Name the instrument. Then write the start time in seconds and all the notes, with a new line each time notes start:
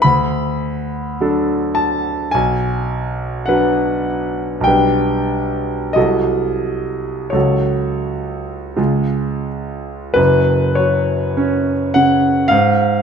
grand piano
0.02 D2 B5
1.21 F#3 D4 A4
1.75 A5
2.31 B1 G#5
3.46 F#3 D4 B4 F#5
4.61 B1 G5
4.66 G3 D4 B4
5.93 C2 F#3 F#4 A4 D#5
7.30 C#2 F#3 C#5
7.34 F#4 A4
8.76 C#2 G#3 F4 G#4
10.14 F#1 F#2 B4
10.75 F#3 C#5
11.37 C#4
11.94 C#3 F#5
12.48 G#2 F5